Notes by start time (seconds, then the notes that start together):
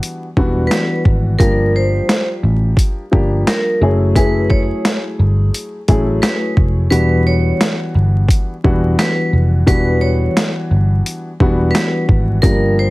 Already playing: E3 G3 B3 D4 F#4
0.03 closed hi-hat
0.37 E1 E3 G3 B3 D4 F#4, kick
0.67 B4, snare
0.72 closed hi-hat
1.05 G#1, kick
1.39 G1 F3 G3 A#3 D4 G4 A#4, kick, closed hi-hat
1.76 C5
2.09 snare, closed hi-hat
2.43 A1
2.77 kick, closed hi-hat
3.11 G1 F3 G3 A#3 D4 G4, kick
3.47 A#4, snare, closed hi-hat
3.81 F#1 F#3 A3 C#4 E4 G#4
4.15 F#3 A3 C#4 E4 G#4 B4, kick, closed hi-hat
4.50 C#5, kick
4.85 snare, closed hi-hat
5.19 G1
5.54 closed hi-hat
5.88 A1 F#3 A3 C#4 E4 G#4, kick, closed hi-hat
6.22 B4, snare, closed hi-hat
6.57 F1, kick
6.90 E1 E3 G3 B3 D4 F#4 B4, closed hi-hat
7.27 C#5
7.61 snare, closed hi-hat
7.95 G1
8.28 kick, closed hi-hat
8.64 E1 E3 G3 B3 D4 F#4, kick
8.99 B4, snare, closed hi-hat
9.33 F1
9.66 E1 E3 G3 B3 D4 F#4 B4, kick, closed hi-hat
10.01 C#5
10.37 snare, closed hi-hat
10.71 G1
11.06 closed hi-hat
11.40 E1 E3 G3 B3 D4 F#4, kick
11.71 B4
11.75 snare, closed hi-hat
12.09 G#1, kick
12.42 G1 F3 G3 A#3 D4 G4 A#4, kick, closed hi-hat
12.79 C5